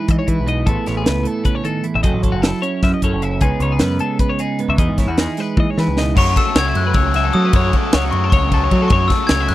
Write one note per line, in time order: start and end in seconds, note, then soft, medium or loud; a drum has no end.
0.00 1.43 E3 medium
0.00 0.65 G#3 medium
0.00 0.46 D#4 medium
0.00 0.27 E4 soft
0.00 0.67 G#4 medium
0.00 0.11 B4 medium
0.08 0.18 E3 medium
0.08 0.18 D#5 medium
0.08 kick medium
0.08 closed hi-hat medium
0.19 0.29 C#5 medium
0.27 0.37 E3 medium
0.27 0.68 E4 medium
0.27 0.48 B4 medium
0.27 kick medium
0.27 closed hi-hat medium
0.40 0.66 B1 medium
0.46 0.65 B2 medium
0.46 0.65 D#4 soft
0.46 0.68 D#5 medium
0.46 closed hi-hat soft
0.66 0.76 A1 medium
0.66 2.02 A2 medium
0.66 1.23 A3 medium
0.66 1.03 B3 medium
0.66 0.86 E4 medium
0.66 2.05 G#4 medium
0.66 0.87 A4 medium
0.66 kick loud
0.66 closed hi-hat medium
0.86 1.05 A1 medium
0.86 2.07 E4 soft
0.86 0.97 C#5 medium
0.86 snare soft
0.86 closed hi-hat medium
0.97 1.07 G#4 medium
1.04 1.25 C#2 medium
1.04 2.04 B3 medium
1.04 1.27 B4 medium
1.04 snare loud
1.04 closed hi-hat medium
1.23 2.01 A3 medium
1.23 1.47 A4 medium
1.23 closed hi-hat medium
1.44 1.63 C#3 medium
1.44 1.55 B4 medium
1.44 kick medium
1.44 closed hi-hat medium
1.55 1.65 C#5 medium
1.64 1.83 D#3 medium
1.64 1.85 A4 medium
1.64 closed hi-hat medium
1.84 2.04 E3 medium
1.84 closed hi-hat medium
1.95 2.03 A1 medium
1.95 2.03 E5 medium
2.03 2.13 F#1 medium
2.03 3.41 F#3 medium
2.03 2.23 A4 medium
2.03 2.22 D#5 medium
2.03 kick medium
2.03 closed hi-hat medium
2.14 2.32 A1 medium
2.22 3.03 A4 medium
2.22 2.34 C#5 medium
2.22 kick medium
2.22 closed hi-hat medium
2.32 2.52 F#1 medium
2.32 2.42 F#4 medium
2.42 3.22 E4 medium
2.42 2.63 A4 medium
2.42 snare loud
2.42 closed hi-hat medium
2.62 3.39 C#4 medium
2.62 2.83 C#5 medium
2.62 closed hi-hat medium
2.83 2.92 F#2 medium
2.83 2.93 E5 medium
2.83 kick medium
2.83 snare soft
2.83 closed hi-hat medium
2.94 3.03 D#5 medium
3.02 3.12 F#2 medium
3.02 3.41 A4 medium
3.02 3.23 C#5 medium
3.02 kick medium
3.02 closed hi-hat medium
3.13 3.39 F#1 medium
3.22 3.40 C#3 medium
3.22 3.43 E4 soft
3.22 3.43 E5 medium
3.22 closed hi-hat medium
3.41 3.51 C#2 medium
3.41 4.78 C#3 medium
3.41 4.00 G#3 medium
3.41 3.82 B3 medium
3.41 3.62 D#4 medium
3.41 3.62 G#4 medium
3.41 4.78 B4 medium
3.41 kick medium
3.41 closed hi-hat medium
3.60 3.79 C#2 medium
3.60 4.39 D#4 soft
3.60 3.72 C#5 medium
3.60 closed hi-hat medium
3.72 3.82 G#4 medium
3.79 3.99 F#2 medium
3.79 4.59 B3 medium
3.79 4.00 B4 medium
3.79 snare loud
3.79 closed hi-hat medium
3.99 4.77 G#3 medium
3.99 4.20 A4 medium
3.99 closed hi-hat medium
4.19 4.30 B4 medium
4.19 kick medium
4.19 closed hi-hat medium
4.29 4.40 C#5 medium
4.39 4.99 D#4 medium
4.39 4.60 G#4 medium
4.39 closed hi-hat medium
4.59 4.79 G#2 medium
4.59 5.19 B3 medium
4.59 closed hi-hat medium
4.69 4.78 C#2 medium
4.69 4.79 E5 medium
4.78 4.87 E2 loud
4.78 6.14 E3 medium
4.78 6.17 G#4 medium
4.78 4.99 D#5 medium
4.78 kick loud
4.78 closed hi-hat medium
4.88 5.06 G#2 medium
4.98 5.78 E4 medium
4.98 5.09 C#5 medium
4.98 kick medium
4.98 snare soft
4.98 closed hi-hat medium
5.07 5.26 E2 medium
5.07 5.19 F#4 medium
5.17 5.97 D#4 medium
5.17 5.40 G#4 medium
5.17 snare loud
5.17 closed hi-hat medium
5.37 6.14 G#3 medium
5.37 5.59 B4 medium
5.37 snare soft
5.37 closed hi-hat medium
5.57 5.66 E3 medium
5.57 5.70 D#5 medium
5.57 kick loud
5.57 high tom medium
5.70 5.79 C#5 medium
5.78 5.86 E3 medium
5.78 6.15 E4 medium
5.78 5.98 B4 medium
5.78 snare medium
5.88 6.14 C#2 medium
5.97 6.15 B2 medium
5.97 6.15 D#4 soft
5.97 6.17 D#5 medium
5.97 snare medium
6.16 6.55 F#2 loud
6.16 6.34 F#2 loud
6.16 6.55 C#3 loud
6.16 6.39 F#3 medium
6.16 6.38 A3 loud
6.16 6.37 C#4 loud
6.16 6.36 F#4 loud
6.16 6.37 C#5 medium
6.16 6.38 C#6 medium
6.16 kick loud
6.16 crash loud
6.36 6.57 F#3 medium
6.36 6.57 A3 medium
6.36 6.58 C#4 medium
6.36 6.58 F#4 medium
6.36 6.56 A4 medium
6.36 6.57 E6 loud
6.36 kick medium
6.36 ride medium
6.55 6.73 C#2 medium
6.55 7.53 F#2 loud
6.55 7.34 C#3 loud
6.55 7.16 F#3 loud
6.55 7.16 A3 loud
6.55 7.15 C#4 loud
6.55 7.14 F#4 loud
6.55 6.67 C#5 medium
6.55 6.77 G#6 loud
6.55 snare loud
6.55 ride loud
6.67 6.86 E5 medium
6.75 6.93 F#2 medium
6.75 6.96 F#6 loud
6.75 ride medium
6.87 6.95 B4 medium
6.94 7.30 C#2 loud
6.94 7.15 C#5 medium
6.94 7.35 E6 medium
6.94 kick loud
6.94 ride loud
7.14 7.33 F#3 medium
7.14 7.34 A3 medium
7.14 7.35 C#4 medium
7.14 7.36 F#4 medium
7.14 7.25 E5 medium
7.14 snare soft
7.14 ride medium
7.25 7.45 A4 medium
7.33 7.55 F#3 medium
7.33 7.52 F#3 loud
7.33 7.55 A3 medium
7.33 7.55 C#4 medium
7.33 7.56 F#4 medium
7.33 8.14 D#6 loud
7.33 ride medium
7.45 7.54 B4 medium
7.53 7.71 F#2 loud
7.53 7.92 F#2 medium
7.53 7.92 C#3 loud
7.53 7.75 F#3 medium
7.53 7.74 A3 loud
7.53 7.73 C#4 medium
7.53 7.72 F#4 loud
7.53 7.76 C#5 medium
7.53 kick loud
7.53 ride loud
7.72 7.94 F#3 medium
7.72 7.94 A3 medium
7.72 7.95 C#4 medium
7.72 7.95 F#4 medium
7.72 kick medium
7.72 ride medium
7.76 7.94 A4 medium
7.93 8.11 C#2 medium
7.93 8.91 F#2 loud
7.93 8.71 C#3 loud
7.93 8.54 F#3 loud
7.93 8.53 A3 loud
7.93 8.52 C#4 loud
7.93 8.52 F#4 loud
7.93 8.03 C#5 medium
7.93 snare loud
7.93 ride loud
8.04 8.24 F#4 medium
8.11 8.30 F#2 loud
8.11 8.29 C#6 medium
8.11 ride medium
8.24 8.33 A4 medium
8.30 8.67 C#2 loud
8.30 8.52 C#5 medium
8.30 8.72 C#6 medium
8.30 kick loud
8.30 ride medium
8.52 8.70 F#3 medium
8.52 8.71 A3 medium
8.52 8.71 C#4 medium
8.52 8.73 F#4 medium
8.52 8.62 A4 medium
8.52 kick medium
8.52 ride medium
8.64 8.82 C#5 medium
8.70 8.91 F#3 medium
8.70 8.89 F#3 loud
8.70 8.93 A3 medium
8.70 8.93 C#4 medium
8.70 8.93 F#4 medium
8.70 kick medium
8.70 ride medium
8.82 8.91 A4 medium
8.88 9.08 F#2 loud
8.88 9.29 F#2 loud
8.88 9.09 C#6 medium
8.88 kick loud
8.88 ride loud
8.92 9.28 C#3 medium
8.92 9.12 F#3 loud
8.92 9.12 A3 loud
8.92 9.11 C#4 loud
8.92 9.10 F#4 loud
8.92 9.11 C#5 loud
9.08 9.31 C#4 medium
9.08 9.31 F#4 medium
9.08 9.31 A4 medium
9.08 9.29 E6 medium
9.08 kick medium
9.08 snare soft
9.08 ride medium
9.12 9.30 F#3 medium
9.12 9.31 A3 medium
9.27 9.47 C#2 medium
9.27 9.55 F#2 loud
9.27 9.55 C#3 loud
9.27 9.55 F#3 loud
9.27 9.48 G#6 loud
9.27 snare loud
9.27 ride loud
9.31 9.55 A3 loud
9.31 9.55 C#4 loud
9.31 9.55 F#4 loud
9.31 9.40 C#5 medium
9.40 9.55 E5 medium
9.48 9.55 F#2 medium
9.48 9.55 F#6 medium
9.48 snare soft
9.48 ride medium